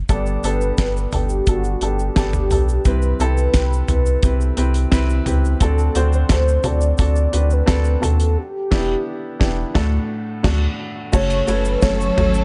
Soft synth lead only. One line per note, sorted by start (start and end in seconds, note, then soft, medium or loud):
0.11 0.47 D5 loud
0.46 1.14 B4 loud
1.14 1.50 G4 medium
1.49 1.85 F#4 medium
1.84 2.17 G4 medium
2.18 2.82 G4 medium
2.87 3.18 B4 medium
3.22 5.24 B4 loud
5.63 6.10 A4 loud
6.14 6.68 C5 loud
6.67 7.00 D5 loud
7.01 7.54 D5 loud
7.53 8.06 B4 loud
8.04 8.40 A4 medium
8.38 9.76 G4 medium
11.14 11.50 C#5 loud
11.49 11.84 B4 medium
11.82 12.44 C#5 loud